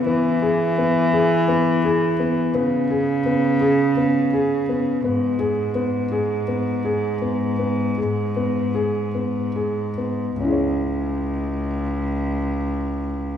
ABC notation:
X:1
M:7/8
L:1/8
Q:1/4=83
K:C#m
V:1 name="Felt piano"
B, G B, G B, G B, | B, G B, G B, G B, | B, G B, G B, G B, | B, G B, G B, G B, |
[CEGc]6- [CEGc] |]
V:2 name="Cello" clef=bass
E,6- E, | C,6- C, | G,,6- G,,- | G,,6- G,, |
C,,6- C,, |]